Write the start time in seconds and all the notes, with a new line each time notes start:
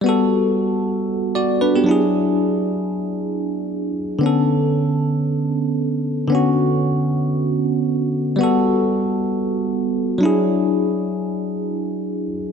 0.01 G3 B3
0.06 F#4 A4
1.35 F#4 D5
1.61 D4 B4
1.76 B3 G4
1.84 F#3 D4
1.89 E4 G#4
4.19 D3 B3
4.23 C#4 A4
6.27 D3 B3
6.32 C#4 F#4
8.36 G3 B3
8.41 F#4 A4
10.18 F#3 D4
10.23 E4 G#4